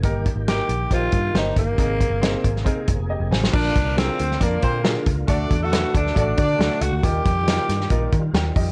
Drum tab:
CC |----------------|----------------|x---------------|----------------|
HH |x-x-x-x-x-x-x-x-|x-x-x-x-x-x-----|--x-x-x-x-x-x-x-|x-x-x-x-x-x-x-x-|
SD |----o-------o---|----o--o------oo|----o--o----o---|----o--o----o---|
BD |o-o-----o-o---o-|o-o---o-o-o-----|o-o-----o-o---o-|o-o---o-o-o-----|

CC |----------------|
HH |x-x-x-x-x-x-x-o-|
SD |----o-oo----o---|
BD |o-o-----o-o---o-|